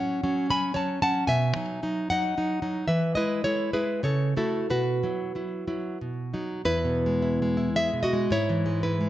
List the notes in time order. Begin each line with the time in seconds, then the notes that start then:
Already playing: F#3 C#4 C#5 F#5
0.24 F#3 C#4
0.50 F#3 C#4 G#5 B5
0.74 F#3 C#4 C#5 A5
1.02 F#3 C#4 F#5 A5
1.27 B2 E5 G#5
1.56 F#3 D#4
1.83 F#3 D#4
2.10 F#3 D#4 D#5 F#5
2.37 F#3 D#4
2.62 F#3 D#4
2.88 E3 B4 E5
3.15 G#3 E4 B4 D#5
3.44 G#3 E4 A4 C#5
3.73 G#3 E4 G#4 B4
4.03 C#3 A4 C#5
4.37 A3 E4 F#4 A4
4.70 B2 F#4 B4
5.03 F#3 E4
5.35 F#3 E4
5.68 F#3 E4
6.01 B2
6.34 F#3 D#4
6.65 E2 E4 B4
6.85 B2
7.06 G#3
7.22 E4
7.42 G#3
7.57 E4
7.76 G#3 G#4 E5
7.94 B2
8.03 F#4 D#5
8.13 G#3
8.30 G#2 E4 C#5
8.49 E3
8.66 G#3
8.83 E4 B4
9.01 G#3